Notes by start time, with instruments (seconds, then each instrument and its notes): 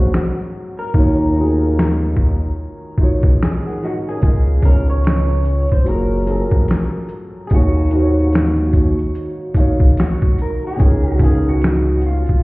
Already playing: upright piano F#3 C#4 G#4 A#4 C5 F5, clean electric guitar F#4
0.14 finger snap, snare
0.79 clean electric guitar A#4
0.93 analog synth bass D#2, upright piano D#3 D#4 F4 F#4, kick
0.98 upright piano C#5
1.35 upright piano D#3 D#4 F4
1.40 upright piano F#4 G#4
1.79 finger snap, snare
2.17 kick
2.98 upright piano D#3 D#4 F4, kick
3.02 upright piano F#4 C#5
3.23 analog synth bass C#2, kick
3.43 clean electric guitar G#4, finger snap, snare
3.66 upright piano A#4 F#5
3.83 upright piano F#4 D#5, clean electric guitar F#4, snare
4.08 upright piano C#4 A#4, clean electric guitar G#4
4.21 analog synth bass C#2, upright piano C#3 C#4 F4, kick, closed hi-hat
4.25 upright piano A#4 D#5
4.62 upright piano C#3 C#4 F4, clean electric guitar A#4, kick, closed hi-hat
4.67 upright piano A#4 C#5
4.90 clean electric guitar C#5
5.04 finger snap, snare, closed hi-hat
5.45 closed hi-hat
5.69 clean electric guitar C5, kick, closed hi-hat
5.84 analog synth bass F#1, upright piano F#3 C#4 F4, closed hi-hat
5.88 upright piano G#4 A#4, clean electric guitar A#4
6.25 upright piano F#3 C#4 F4, closed hi-hat
6.29 upright piano G#4 A4
6.37 upright piano A#4
6.51 analog synth bass A#1, kick
6.68 finger snap, snare, closed hi-hat
7.09 closed hi-hat
7.47 analog synth bass D#2, upright piano D#3, clean electric guitar G#4, kick, closed hi-hat
7.52 upright piano D#4 F#4 F5, clean electric guitar F#4
7.56 upright piano C#5
7.90 upright piano D#3 D#4 F#4 F5, closed hi-hat
7.95 upright piano C5
8.02 upright piano C#5
8.33 finger snap, snare, closed hi-hat
8.73 kick, closed hi-hat
8.99 closed hi-hat
9.15 closed hi-hat
9.54 upright piano D#3 D#4 F5, kick, closed hi-hat
9.58 upright piano F#4 C#5
9.80 analog synth bass C#2, kick
9.97 clean electric guitar F#4, finger snap, snare, closed hi-hat
10.22 kick
10.38 clean electric guitar A#4, closed hi-hat
10.67 clean electric guitar G#4
10.76 analog synth bass C#2, upright piano C#3 C#4 D#4, kick, closed hi-hat
10.80 upright piano F4 A#4
11.11 clean electric guitar F#4
11.18 upright piano C#3 C#4 D#4, kick, closed hi-hat
11.22 clean electric guitar G#4, upright piano A#4 F5
11.49 clean electric guitar F#4
11.62 finger snap, snare, closed hi-hat
12.01 closed hi-hat
12.06 clean electric guitar F4
12.27 kick, closed hi-hat